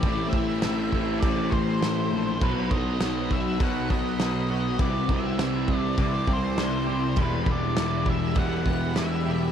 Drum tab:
CC |x-x-x-x-|x-x-x-x-|x-x-x-x-|x-x-x-x-|
SD |--o---o-|--o---o-|--o---o-|--o---o-|
BD |oo-ooo--|oo-ooo--|oo-ooo--|oo-ooo--|